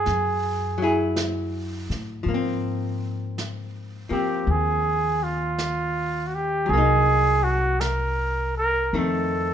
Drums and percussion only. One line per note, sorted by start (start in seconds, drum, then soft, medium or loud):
0.06 brush sweep soft
0.06 snare soft
1.16 brush sweep soft
1.16 snare soft
1.16 hi-hat pedal soft
1.91 snare soft
2.28 brush sweep soft
3.38 brush sweep soft
3.38 snare soft
3.38 hi-hat pedal soft
4.48 brush sweep soft
5.58 brush sweep soft
5.58 snare soft
5.58 hi-hat pedal soft
6.69 brush sweep soft
7.81 brush sweep soft
7.81 snare soft
7.81 hi-hat pedal soft
8.94 brush sweep soft